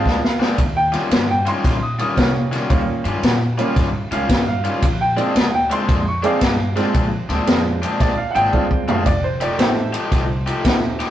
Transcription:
Already playing: A#2 G#3 C4 D4 F5
0.05 D2, kick, snare
0.24 F5, snare
0.39 A#2 G#3 C4 D4, snare
0.58 D#2, kick, ride
0.77 G5
0.92 D#3 G3 C#4 F4, snare, ride
1.11 G2, snare, ride
1.26 F#5
1.31 G5
1.46 D#3 G3 C#4 F4 C6, ride
1.64 A#2, kick, snare, ride
1.83 D#6
1.99 D#3 G3 C#4 F4 D#6, ride
2.17 C3 G3 A#3 C#4 F4, kick, snare, ride
2.52 D#3 G3 C#4 F4, snare, ride
2.70 D#2 G3 A#3 C#4 F4, kick, ride
3.05 G2 D#3 G3 C#4 F4, ride
3.23 A#2, snare, ride
3.58 D#3 G3 A#3 C#4 F4, ride
3.76 G2, kick, snare, ride
4.11 C#2 D#3 G3 C#4 F4 F5, ride
4.29 G2, kick, snare, ride
4.48 F5
4.64 D#3 G3 C#4 F4, ride
4.82 A#1, kick, ride
5.01 G5
5.16 A#2 G#3 C4 D4 F4, ride
5.35 D2, snare, ride
5.50 F#5
5.55 G5
5.70 A#2 G#3 C4 D4 C6, ride
5.89 F2, kick, ride
6.08 C#6
6.23 A#2 G#3 C4 D4 G#4 F5 D6, ride
6.41 G2, kick, snare, ride
6.76 A#2 G#3 C4 D4 F4, snare, ride
6.94 A#1, kick, ride
7.29 D2 A#2 G#3 C4 D4, snare, ride
7.47 F2 G#3 C4 D4 F4, snare, ride
7.82 A#2 G#3 C4 D4, ride
8.00 D2 D5, kick, snare, ride
8.18 F5
8.31 F#5
8.35 G#1 A#2 G#3 C4 D4 G5, ride
8.53 D2 G#3 C4 D4 F4, kick, high tom
8.71 kick
8.88 A#2 G#3 C4 D4 F5, floor tom
9.06 F1 D5, kick, ride
9.24 C5
9.41 F3 A3 D#4 G4 D5, ride
9.58 A1 A3 C4 D#4 G4 C5, snare, ride
9.93 F3 A3 D#4 G4, ride
10.12 C2, kick, snare, ride
10.46 F3 A3 D#4 G4, ride
10.64 D2 A3 C4 D#4 G4, kick, snare, ride
10.99 F3 A3 D#4 G4, snare, ride

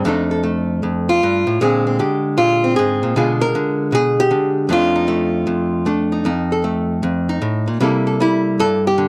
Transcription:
0.05 F2 A3 D4 D#4 A4
0.31 A4
0.43 A3
0.83 F2
1.09 F4
1.23 G2
1.47 A2
1.61 A#2 D3 G#3 C4 G#4
1.87 C4
1.99 D3 G4
2.38 A#2 F4
2.64 C4
2.76 G#2 G#4
3.03 A#2
3.16 B2 D3 G#3 F4 G#4
3.41 A#4
3.55 D3
3.92 B2 G#4
4.20 G4
4.31 D3
4.69 F2 A3 D4 D#4 F4
4.95 D#4
5.08 A3
5.47 F2
5.86 A3 D4
6.12 D#4
6.25 F2 D#4
6.52 A4
6.64 A3
7.03 F2
7.29 D#4
7.42 A2
7.68 A#2
7.80 C3 G3 A#3 E4 A4
8.07 A4
8.20 G3 E4
8.59 G2 A4
8.87 G4
8.98 D3

